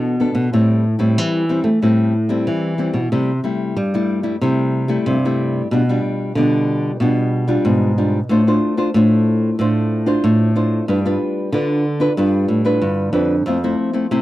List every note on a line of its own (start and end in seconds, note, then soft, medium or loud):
0.00 0.29 B2 medium
0.00 0.49 B2 medium
0.00 0.14 B3 medium
0.00 0.14 D4 medium
0.00 0.15 A4 medium
0.20 0.47 B3 medium
0.20 0.47 D4 soft
0.20 0.48 A4 medium
0.35 0.49 B2 medium
0.53 1.14 A2 medium
0.53 0.94 A2 medium
0.53 0.83 G3 medium
0.53 0.83 C4 medium
0.53 0.83 E4 medium
0.99 1.18 A2 medium
0.99 1.43 G3 medium
0.99 1.44 C4 medium
0.99 1.44 E4 medium
1.18 1.59 E3 medium
1.18 1.79 E3 medium
1.49 1.68 G3 medium
1.49 1.69 C4 medium
1.49 1.69 E4 medium
1.64 1.78 A3 medium
1.82 2.37 A2 medium
1.82 2.44 A2 medium
1.82 2.12 G3 medium
1.82 2.13 C4 medium
1.82 2.13 E4 medium
2.29 2.73 G3 medium
2.29 2.74 C4 medium
2.29 2.74 E4 medium
2.47 2.88 E3 medium
2.47 3.09 E3 medium
2.78 2.98 G3 soft
2.78 2.98 C4 soft
2.78 2.98 E4 medium
2.94 3.08 B2 medium
3.12 3.39 C3 medium
3.12 3.73 C3 medium
3.12 3.31 G3 medium
3.12 3.31 A3 soft
3.12 3.31 E4 medium
3.44 3.74 G3 medium
3.44 3.74 A3 medium
3.44 3.75 E4 medium
3.77 4.38 G2 medium
3.77 4.31 G3 medium
3.94 4.20 G3 medium
3.94 4.21 A3 medium
3.94 4.21 E4 medium
4.23 4.35 G3 medium
4.23 4.35 A3 medium
4.23 4.35 E4 medium
4.41 4.96 C3 medium
4.41 5.03 C3 medium
4.41 4.85 G3 medium
4.41 4.85 A3 medium
4.41 4.85 E4 medium
4.88 5.16 G3 medium
4.88 5.17 A3 medium
4.88 5.17 E4 medium
5.06 5.68 G2 soft
5.06 5.61 C3 loud
5.25 5.67 G3 medium
5.25 5.67 A3 medium
5.25 5.67 E4 medium
5.71 5.98 B2 medium
5.71 6.33 B2 medium
5.71 5.81 G3 medium
5.71 5.81 D4 medium
5.71 5.82 F4 medium
5.89 6.31 G3 medium
5.89 6.31 D4 medium
5.89 6.32 F4 medium
6.35 6.98 B2 medium
6.35 6.90 D3 medium
6.35 6.96 G3 medium
6.35 6.96 D4 medium
6.35 6.96 F4 medium
7.00 7.55 B2 loud
7.00 7.62 B2 medium
7.00 7.44 G3 medium
7.00 7.44 D4 medium
7.00 7.44 F4 medium
7.48 7.91 G3 medium
7.48 7.92 D4 medium
7.48 7.92 F4 medium
7.65 8.20 G#2 medium
7.65 8.27 B2 medium
7.98 8.18 G3 medium
7.98 8.18 D4 medium
7.98 8.18 F4 medium
8.29 8.57 A2 medium
8.29 8.91 A3 medium
8.29 8.41 D4 soft
8.29 8.41 F4 medium
8.29 8.41 C5 medium
8.47 8.74 D4 medium
8.47 8.74 F4 medium
8.47 8.74 C5 medium
8.77 8.89 D4 medium
8.77 8.89 F4 medium
8.77 8.89 C5 medium
8.94 9.49 A2 medium
8.94 9.56 A3 medium
8.94 9.54 D4 medium
8.94 9.55 F4 medium
8.94 9.55 C5 medium
9.59 10.14 A2 medium
9.59 10.21 A3 medium
9.59 10.03 D4 medium
9.59 10.03 F4 medium
9.59 10.03 C5 medium
10.06 10.50 D4 medium
10.06 10.50 F4 medium
10.06 10.50 C5 medium
10.24 10.79 A2 loud
10.24 10.86 A3 medium
10.56 10.85 D4 soft
10.56 10.85 F4 medium
10.56 10.86 C5 medium
10.88 11.16 G2 medium
10.88 11.50 G3 medium
10.88 10.98 D4 soft
10.88 10.98 F4 medium
10.88 10.99 B4 medium
11.05 11.48 D4 medium
11.05 11.48 F4 medium
11.05 11.49 B4 medium
11.52 12.08 D3 medium
11.52 12.15 D3 medium
11.52 11.84 D4 medium
11.52 11.84 F4 medium
11.52 11.84 B4 medium
12.00 12.12 D4 medium
12.00 12.12 F4 medium
12.00 12.12 B4 medium
12.17 12.45 G2 medium
12.17 12.79 G3 medium
12.17 12.61 D4 medium
12.17 12.61 F4 medium
12.17 12.61 B4 medium
12.48 12.78 A2 medium
12.65 13.09 D4 medium
12.65 13.09 F4 medium
12.65 13.09 B4 medium
12.81 13.11 G2 medium
12.81 13.44 D3 soft
13.13 13.43 F2 medium
13.13 13.35 D4 medium
13.13 13.35 F4 soft
13.13 13.35 B4 medium
13.46 13.74 F2 loud
13.46 14.08 F3 medium
13.46 13.57 A3 medium
13.46 13.57 C4 soft
13.46 13.57 E4 medium
13.64 13.91 A3 medium
13.64 13.91 C4 medium
13.64 13.91 E4 medium
13.93 14.05 A3 medium
13.93 14.06 C4 medium
13.93 14.06 E4 medium
14.11 14.22 C3 medium
14.11 14.22 A3 medium
14.11 14.22 C4 medium
14.11 14.22 E4 medium